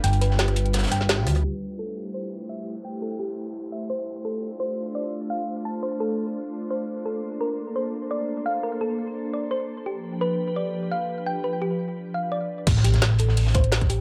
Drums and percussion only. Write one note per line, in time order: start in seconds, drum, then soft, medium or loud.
0.04 closed hi-hat medium
0.13 closed hi-hat soft
0.21 closed hi-hat medium
0.31 snare soft
0.39 snare loud
0.39 closed hi-hat loud
0.39 closed hi-hat medium
0.48 cross-stick soft
0.48 closed hi-hat soft
0.56 closed hi-hat medium
0.66 closed hi-hat soft
0.73 cross-stick soft
0.73 snare medium
0.73 closed hi-hat medium
0.78 snare medium
0.78 closed hi-hat medium
0.83 snare medium
0.83 closed hi-hat medium
0.87 snare medium
0.87 closed hi-hat medium
0.91 snare medium
0.91 closed hi-hat medium
1.01 snare soft
1.09 snare loud
1.09 closed hi-hat medium
1.27 cross-stick soft
1.27 closed hi-hat medium
1.35 cross-stick soft
1.35 closed hi-hat soft
12.67 kick loud
12.67 closed hi-hat loud
12.67 closed hi-hat medium
12.67 crash loud
12.77 snare soft
12.84 closed hi-hat medium
12.94 snare medium
12.94 closed hi-hat soft
13.02 snare loud
13.02 closed hi-hat medium
13.02 closed hi-hat loud
13.19 closed hi-hat medium
13.29 snare medium
13.37 closed hi-hat loud
13.37 open hi-hat medium
13.46 snare medium
13.55 kick loud
13.55 closed hi-hat medium
13.64 closed hi-hat soft
13.72 snare loud
13.72 closed hi-hat medium
13.81 kick medium
13.81 closed hi-hat soft
13.90 closed hi-hat medium